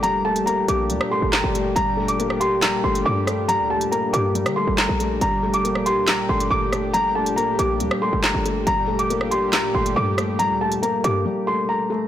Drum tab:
HH |x--xx-x-x-----x-|x--xx-x-x--x--x-|x--xx-x-xx----x-|x--xx-x-x--x--x-|
CP |------------x---|--------x-------|------------x---|--------x-------|
SD |---------r--o---|-----r--o-----r-|---------r--o---|-----r--o-----r-|

HH |x--xx-x-x-----x-|x--xx-x-x--x--x-|x--xx-x---------|
CP |------------x---|--------x-------|----------------|
SD |---------r--o---|-----r--o-----r-|----------------|